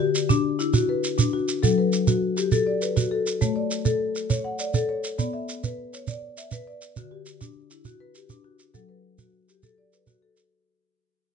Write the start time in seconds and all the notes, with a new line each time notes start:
Already playing: D3 F#4
0.00 G4
0.15 shekere
0.29 D4, shekere
0.59 E4, shekere
0.74 F#4, shekere
0.89 B4
1.04 shekere
1.18 D4, shekere
1.33 F#4
1.48 shekere
1.63 F#3 A4, shekere
1.78 B4
1.93 shekere
2.07 F#4, shekere
2.37 G4, shekere
2.52 A4, shekere
2.67 D5
2.82 B4, shekere
2.96 F#4, shekere
3.11 A4
3.27 shekere
3.41 A3 C#5, shekere
3.56 D5
3.71 shekere
3.85 A4, shekere
4.15 shekere
4.30 C#5, shekere
4.44 F#5
4.59 D5, shekere
4.74 A4, shekere
4.89 C#5
5.04 shekere
5.18 B3 D5, shekere
5.33 E5
5.49 shekere
5.63 B4, shekere
5.93 C#5, shekere
6.07 D5, shekere
6.37 E5, shekere
6.51 B4, shekere
6.67 D5
6.82 shekere
6.96 D3 F#4, shekere
7.11 G4
7.26 shekere
7.41 D4, shekere
7.71 E4, shekere
7.85 F#4, shekere
8.00 B4
8.15 G4, shekere
8.29 D4, shekere
8.44 F#4
8.59 shekere
8.74 F#3 A4, shekere
8.89 B4
9.18 F#4, shekere
9.48 G4, shekere
9.63 A4, shekere
9.78 D5
9.93 B4, shekere
10.07 F#4, shekere
10.22 A4
10.37 shekere